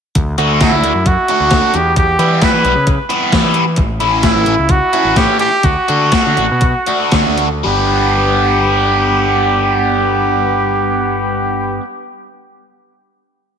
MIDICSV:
0, 0, Header, 1, 5, 480
1, 0, Start_track
1, 0, Tempo, 454545
1, 171, Time_signature, 4, 2, 24, 8
1, 4971, Tempo, 478088
1, 6891, Tempo, 515464
1, 7851, Tempo, 531444
1, 13210, End_track
2, 0, Start_track
2, 0, Title_t, "Trumpet"
2, 0, Program_c, 0, 56
2, 648, Note_on_c, 0, 64, 71
2, 1130, Note_on_c, 0, 66, 77
2, 1146, Note_off_c, 0, 64, 0
2, 1858, Note_on_c, 0, 67, 88
2, 1874, Note_off_c, 0, 66, 0
2, 2079, Note_off_c, 0, 67, 0
2, 2085, Note_on_c, 0, 67, 75
2, 2561, Note_on_c, 0, 71, 75
2, 2577, Note_off_c, 0, 67, 0
2, 3043, Note_off_c, 0, 71, 0
2, 4477, Note_on_c, 0, 64, 78
2, 4971, Note_on_c, 0, 66, 90
2, 4986, Note_off_c, 0, 64, 0
2, 5441, Note_on_c, 0, 67, 86
2, 5456, Note_off_c, 0, 66, 0
2, 5661, Note_off_c, 0, 67, 0
2, 5667, Note_on_c, 0, 67, 101
2, 5918, Note_on_c, 0, 66, 83
2, 5933, Note_off_c, 0, 67, 0
2, 7366, Note_off_c, 0, 66, 0
2, 7852, Note_on_c, 0, 67, 68
2, 11582, Note_off_c, 0, 67, 0
2, 13210, End_track
3, 0, Start_track
3, 0, Title_t, "Overdriven electric guitar"
3, 0, Program_c, 1, 29
3, 402, Note_on_c, 1, 66, 94
3, 406, Note_on_c, 1, 62, 76
3, 409, Note_on_c, 1, 50, 63
3, 409, Note_on_c, 1, 57, 70
3, 629, Note_off_c, 1, 50, 0
3, 633, Note_off_c, 1, 62, 0
3, 635, Note_off_c, 1, 57, 0
3, 642, Note_off_c, 1, 66, 0
3, 642, Note_on_c, 1, 50, 58
3, 646, Note_on_c, 1, 62, 60
3, 647, Note_on_c, 1, 57, 61
3, 655, Note_on_c, 1, 66, 69
3, 957, Note_off_c, 1, 50, 0
3, 960, Note_off_c, 1, 57, 0
3, 960, Note_off_c, 1, 62, 0
3, 964, Note_off_c, 1, 66, 0
3, 1366, Note_on_c, 1, 66, 81
3, 1370, Note_on_c, 1, 62, 86
3, 1379, Note_on_c, 1, 50, 70
3, 1381, Note_on_c, 1, 57, 74
3, 1599, Note_off_c, 1, 50, 0
3, 1600, Note_off_c, 1, 57, 0
3, 1606, Note_off_c, 1, 62, 0
3, 1607, Note_off_c, 1, 66, 0
3, 1612, Note_on_c, 1, 50, 52
3, 1612, Note_on_c, 1, 57, 64
3, 1619, Note_on_c, 1, 62, 60
3, 1621, Note_on_c, 1, 66, 61
3, 1850, Note_off_c, 1, 50, 0
3, 1850, Note_off_c, 1, 57, 0
3, 1853, Note_off_c, 1, 62, 0
3, 1854, Note_off_c, 1, 66, 0
3, 2315, Note_on_c, 1, 64, 79
3, 2320, Note_on_c, 1, 59, 78
3, 2322, Note_on_c, 1, 55, 73
3, 2329, Note_on_c, 1, 52, 64
3, 2549, Note_off_c, 1, 52, 0
3, 2549, Note_off_c, 1, 55, 0
3, 2557, Note_off_c, 1, 59, 0
3, 2558, Note_off_c, 1, 64, 0
3, 2561, Note_on_c, 1, 52, 62
3, 2562, Note_on_c, 1, 55, 64
3, 2569, Note_on_c, 1, 59, 65
3, 2571, Note_on_c, 1, 64, 73
3, 2876, Note_off_c, 1, 52, 0
3, 2876, Note_off_c, 1, 55, 0
3, 2880, Note_off_c, 1, 59, 0
3, 2880, Note_off_c, 1, 64, 0
3, 3270, Note_on_c, 1, 64, 93
3, 3274, Note_on_c, 1, 59, 77
3, 3284, Note_on_c, 1, 52, 69
3, 3284, Note_on_c, 1, 55, 77
3, 3500, Note_off_c, 1, 52, 0
3, 3510, Note_off_c, 1, 55, 0
3, 3512, Note_on_c, 1, 52, 56
3, 3513, Note_off_c, 1, 59, 0
3, 3518, Note_off_c, 1, 64, 0
3, 3522, Note_on_c, 1, 55, 65
3, 3525, Note_on_c, 1, 59, 58
3, 3531, Note_on_c, 1, 64, 78
3, 3830, Note_off_c, 1, 52, 0
3, 3835, Note_off_c, 1, 55, 0
3, 3837, Note_off_c, 1, 59, 0
3, 3840, Note_off_c, 1, 64, 0
3, 4230, Note_on_c, 1, 64, 91
3, 4238, Note_on_c, 1, 61, 74
3, 4239, Note_on_c, 1, 57, 72
3, 4242, Note_on_c, 1, 52, 61
3, 4455, Note_off_c, 1, 52, 0
3, 4461, Note_off_c, 1, 57, 0
3, 4466, Note_off_c, 1, 61, 0
3, 4468, Note_off_c, 1, 64, 0
3, 4468, Note_on_c, 1, 52, 63
3, 4474, Note_on_c, 1, 57, 65
3, 4479, Note_on_c, 1, 61, 71
3, 4481, Note_on_c, 1, 64, 72
3, 4791, Note_off_c, 1, 52, 0
3, 4794, Note_off_c, 1, 57, 0
3, 4796, Note_off_c, 1, 61, 0
3, 4797, Note_off_c, 1, 64, 0
3, 5196, Note_on_c, 1, 64, 87
3, 5198, Note_on_c, 1, 61, 85
3, 5204, Note_on_c, 1, 57, 77
3, 5208, Note_on_c, 1, 52, 72
3, 5420, Note_off_c, 1, 52, 0
3, 5423, Note_off_c, 1, 57, 0
3, 5430, Note_off_c, 1, 61, 0
3, 5432, Note_on_c, 1, 52, 62
3, 5433, Note_off_c, 1, 64, 0
3, 5435, Note_on_c, 1, 57, 59
3, 5442, Note_on_c, 1, 61, 64
3, 5444, Note_on_c, 1, 64, 70
3, 5741, Note_off_c, 1, 52, 0
3, 5743, Note_off_c, 1, 57, 0
3, 5746, Note_off_c, 1, 61, 0
3, 5747, Note_off_c, 1, 64, 0
3, 6151, Note_on_c, 1, 66, 88
3, 6156, Note_on_c, 1, 62, 76
3, 6161, Note_on_c, 1, 50, 63
3, 6161, Note_on_c, 1, 57, 74
3, 6389, Note_off_c, 1, 50, 0
3, 6394, Note_off_c, 1, 57, 0
3, 6394, Note_off_c, 1, 66, 0
3, 6397, Note_off_c, 1, 62, 0
3, 6401, Note_on_c, 1, 50, 65
3, 6406, Note_on_c, 1, 57, 71
3, 6410, Note_on_c, 1, 62, 69
3, 6414, Note_on_c, 1, 66, 64
3, 6718, Note_off_c, 1, 50, 0
3, 6721, Note_off_c, 1, 57, 0
3, 6723, Note_off_c, 1, 62, 0
3, 6725, Note_off_c, 1, 66, 0
3, 7125, Note_on_c, 1, 66, 78
3, 7126, Note_on_c, 1, 62, 74
3, 7136, Note_on_c, 1, 57, 66
3, 7138, Note_on_c, 1, 50, 67
3, 7351, Note_off_c, 1, 50, 0
3, 7358, Note_off_c, 1, 57, 0
3, 7360, Note_off_c, 1, 62, 0
3, 7362, Note_off_c, 1, 66, 0
3, 7362, Note_on_c, 1, 50, 59
3, 7369, Note_on_c, 1, 57, 65
3, 7371, Note_on_c, 1, 62, 62
3, 7375, Note_on_c, 1, 66, 66
3, 7677, Note_off_c, 1, 50, 0
3, 7680, Note_off_c, 1, 57, 0
3, 7681, Note_off_c, 1, 62, 0
3, 7684, Note_off_c, 1, 66, 0
3, 7836, Note_on_c, 1, 55, 74
3, 7852, Note_on_c, 1, 62, 88
3, 7863, Note_on_c, 1, 59, 91
3, 7876, Note_on_c, 1, 71, 82
3, 11602, Note_off_c, 1, 55, 0
3, 11618, Note_off_c, 1, 62, 0
3, 11629, Note_off_c, 1, 59, 0
3, 11641, Note_off_c, 1, 71, 0
3, 13210, End_track
4, 0, Start_track
4, 0, Title_t, "Picked electric bass"
4, 0, Program_c, 2, 34
4, 168, Note_on_c, 2, 38, 80
4, 384, Note_off_c, 2, 38, 0
4, 403, Note_on_c, 2, 38, 74
4, 729, Note_off_c, 2, 38, 0
4, 755, Note_on_c, 2, 38, 73
4, 869, Note_off_c, 2, 38, 0
4, 888, Note_on_c, 2, 38, 78
4, 992, Note_off_c, 2, 38, 0
4, 999, Note_on_c, 2, 42, 76
4, 1219, Note_off_c, 2, 42, 0
4, 1481, Note_on_c, 2, 38, 69
4, 1699, Note_off_c, 2, 38, 0
4, 1843, Note_on_c, 2, 40, 76
4, 2275, Note_off_c, 2, 40, 0
4, 2310, Note_on_c, 2, 52, 75
4, 2533, Note_off_c, 2, 52, 0
4, 2671, Note_on_c, 2, 52, 63
4, 2786, Note_off_c, 2, 52, 0
4, 2793, Note_on_c, 2, 35, 83
4, 2903, Note_off_c, 2, 35, 0
4, 2910, Note_on_c, 2, 49, 81
4, 3132, Note_off_c, 2, 49, 0
4, 3514, Note_on_c, 2, 52, 80
4, 3627, Note_off_c, 2, 52, 0
4, 3633, Note_on_c, 2, 52, 80
4, 3987, Note_on_c, 2, 33, 85
4, 4003, Note_off_c, 2, 52, 0
4, 4210, Note_off_c, 2, 33, 0
4, 4244, Note_on_c, 2, 33, 79
4, 4568, Note_off_c, 2, 33, 0
4, 4595, Note_on_c, 2, 33, 74
4, 4708, Note_off_c, 2, 33, 0
4, 4713, Note_on_c, 2, 33, 77
4, 4828, Note_off_c, 2, 33, 0
4, 4846, Note_on_c, 2, 37, 81
4, 5061, Note_off_c, 2, 37, 0
4, 5312, Note_on_c, 2, 33, 66
4, 5526, Note_off_c, 2, 33, 0
4, 5909, Note_on_c, 2, 38, 101
4, 6017, Note_off_c, 2, 38, 0
4, 6161, Note_on_c, 2, 50, 88
4, 6375, Note_off_c, 2, 50, 0
4, 6535, Note_on_c, 2, 50, 70
4, 6638, Note_off_c, 2, 50, 0
4, 6643, Note_on_c, 2, 33, 81
4, 6754, Note_off_c, 2, 33, 0
4, 6785, Note_on_c, 2, 47, 75
4, 6993, Note_off_c, 2, 47, 0
4, 7362, Note_on_c, 2, 50, 84
4, 7470, Note_off_c, 2, 50, 0
4, 7492, Note_on_c, 2, 38, 75
4, 7817, Note_off_c, 2, 38, 0
4, 7854, Note_on_c, 2, 31, 87
4, 11583, Note_off_c, 2, 31, 0
4, 13210, End_track
5, 0, Start_track
5, 0, Title_t, "Drums"
5, 162, Note_on_c, 9, 42, 81
5, 164, Note_on_c, 9, 36, 95
5, 267, Note_off_c, 9, 42, 0
5, 270, Note_off_c, 9, 36, 0
5, 402, Note_on_c, 9, 42, 50
5, 507, Note_off_c, 9, 42, 0
5, 640, Note_on_c, 9, 42, 74
5, 644, Note_on_c, 9, 36, 98
5, 645, Note_on_c, 9, 38, 87
5, 746, Note_off_c, 9, 42, 0
5, 749, Note_off_c, 9, 36, 0
5, 750, Note_off_c, 9, 38, 0
5, 883, Note_on_c, 9, 42, 55
5, 988, Note_off_c, 9, 42, 0
5, 1117, Note_on_c, 9, 42, 74
5, 1122, Note_on_c, 9, 36, 83
5, 1223, Note_off_c, 9, 42, 0
5, 1227, Note_off_c, 9, 36, 0
5, 1356, Note_on_c, 9, 42, 55
5, 1462, Note_off_c, 9, 42, 0
5, 1591, Note_on_c, 9, 42, 70
5, 1595, Note_on_c, 9, 38, 82
5, 1600, Note_on_c, 9, 36, 98
5, 1696, Note_off_c, 9, 42, 0
5, 1700, Note_off_c, 9, 38, 0
5, 1705, Note_off_c, 9, 36, 0
5, 1834, Note_on_c, 9, 42, 54
5, 1939, Note_off_c, 9, 42, 0
5, 2074, Note_on_c, 9, 42, 82
5, 2078, Note_on_c, 9, 36, 105
5, 2179, Note_off_c, 9, 42, 0
5, 2184, Note_off_c, 9, 36, 0
5, 2314, Note_on_c, 9, 42, 54
5, 2420, Note_off_c, 9, 42, 0
5, 2551, Note_on_c, 9, 42, 67
5, 2555, Note_on_c, 9, 38, 96
5, 2557, Note_on_c, 9, 36, 100
5, 2657, Note_off_c, 9, 42, 0
5, 2661, Note_off_c, 9, 38, 0
5, 2663, Note_off_c, 9, 36, 0
5, 2795, Note_on_c, 9, 42, 52
5, 2900, Note_off_c, 9, 42, 0
5, 3029, Note_on_c, 9, 42, 73
5, 3034, Note_on_c, 9, 36, 96
5, 3135, Note_off_c, 9, 42, 0
5, 3139, Note_off_c, 9, 36, 0
5, 3274, Note_on_c, 9, 42, 51
5, 3380, Note_off_c, 9, 42, 0
5, 3511, Note_on_c, 9, 36, 96
5, 3511, Note_on_c, 9, 42, 57
5, 3515, Note_on_c, 9, 38, 102
5, 3616, Note_off_c, 9, 42, 0
5, 3617, Note_off_c, 9, 36, 0
5, 3621, Note_off_c, 9, 38, 0
5, 3740, Note_on_c, 9, 42, 53
5, 3845, Note_off_c, 9, 42, 0
5, 3975, Note_on_c, 9, 42, 75
5, 3988, Note_on_c, 9, 36, 109
5, 4080, Note_off_c, 9, 42, 0
5, 4093, Note_off_c, 9, 36, 0
5, 4227, Note_on_c, 9, 42, 45
5, 4332, Note_off_c, 9, 42, 0
5, 4467, Note_on_c, 9, 42, 72
5, 4471, Note_on_c, 9, 36, 86
5, 4471, Note_on_c, 9, 38, 86
5, 4573, Note_off_c, 9, 42, 0
5, 4577, Note_off_c, 9, 36, 0
5, 4577, Note_off_c, 9, 38, 0
5, 4712, Note_on_c, 9, 42, 52
5, 4817, Note_off_c, 9, 42, 0
5, 4951, Note_on_c, 9, 42, 76
5, 4958, Note_on_c, 9, 36, 101
5, 5052, Note_off_c, 9, 42, 0
5, 5059, Note_off_c, 9, 36, 0
5, 5195, Note_on_c, 9, 42, 53
5, 5296, Note_off_c, 9, 42, 0
5, 5429, Note_on_c, 9, 36, 94
5, 5429, Note_on_c, 9, 42, 77
5, 5433, Note_on_c, 9, 38, 91
5, 5529, Note_off_c, 9, 36, 0
5, 5529, Note_off_c, 9, 42, 0
5, 5533, Note_off_c, 9, 38, 0
5, 5661, Note_on_c, 9, 42, 57
5, 5761, Note_off_c, 9, 42, 0
5, 5901, Note_on_c, 9, 42, 84
5, 5905, Note_on_c, 9, 36, 105
5, 6001, Note_off_c, 9, 42, 0
5, 6006, Note_off_c, 9, 36, 0
5, 6153, Note_on_c, 9, 42, 55
5, 6253, Note_off_c, 9, 42, 0
5, 6388, Note_on_c, 9, 42, 73
5, 6392, Note_on_c, 9, 38, 100
5, 6393, Note_on_c, 9, 36, 94
5, 6488, Note_off_c, 9, 42, 0
5, 6492, Note_off_c, 9, 38, 0
5, 6493, Note_off_c, 9, 36, 0
5, 6641, Note_on_c, 9, 42, 49
5, 6741, Note_off_c, 9, 42, 0
5, 6880, Note_on_c, 9, 42, 71
5, 6888, Note_on_c, 9, 36, 97
5, 6974, Note_off_c, 9, 42, 0
5, 6982, Note_off_c, 9, 36, 0
5, 7119, Note_on_c, 9, 42, 53
5, 7212, Note_off_c, 9, 42, 0
5, 7353, Note_on_c, 9, 42, 65
5, 7357, Note_on_c, 9, 38, 94
5, 7359, Note_on_c, 9, 36, 85
5, 7446, Note_off_c, 9, 42, 0
5, 7450, Note_off_c, 9, 38, 0
5, 7452, Note_off_c, 9, 36, 0
5, 7595, Note_on_c, 9, 42, 59
5, 7688, Note_off_c, 9, 42, 0
5, 13210, End_track
0, 0, End_of_file